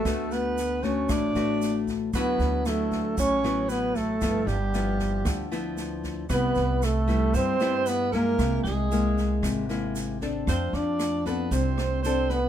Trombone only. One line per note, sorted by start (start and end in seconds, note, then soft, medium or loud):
0.00 0.35 A3 medium
0.33 0.86 B3 medium
0.84 1.13 C#4 medium
1.11 1.88 D4 medium
2.17 2.71 B3 medium
2.69 3.19 A3 medium
3.20 3.73 C#4 medium
3.71 3.99 B3 loud
3.97 4.49 A3 loud
4.48 5.52 G3 medium
6.32 6.86 B3 loud
6.85 7.38 A3 loud
7.36 7.89 C4 loud
7.88 8.13 B3 loud
8.15 8.62 A#3 medium
8.67 9.66 G#3 medium
10.49 10.79 C4 medium
10.77 11.27 D4 medium
11.29 11.56 B3 medium
11.55 12.05 C4 medium
12.05 12.33 C4 medium
12.32 12.49 B3 loud